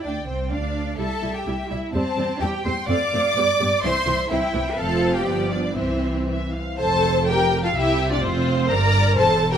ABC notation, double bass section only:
X:1
M:2/4
L:1/8
Q:1/4=126
K:C
V:1 name="Double bass section" clef=bass
D,, C,, D,,2 | C,, C,, C,, C,, | E,, E,, E,, E,, | F,, F,, G,, G,, |
C,, C,, C,, C,, | F,,,2 G,,,2 | C,,3 z | [K:F] F,,,4 |
C,,2 F,,,2 | G,,,2 E,,,2 |]